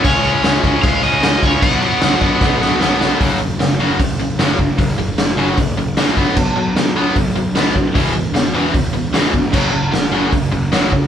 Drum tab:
CC |xxxxxxxx|xxxx----|--------|--------|
HH |--------|--------|o-o-o-o-|o-o-o-o-|
SD |--o---o-|--o-oooo|--o---o-|--o---o-|
BD |o--oo--o|o--oo---|o---o--o|o---o--o|

CC |x-------|--------|x-------|
HH |--o-o-o-|o-o-o-o-|--o-o-o-|
SD |--o---o-|--o---o-|--o---o-|
BD |o---o--o|o---o--o|o---o--o|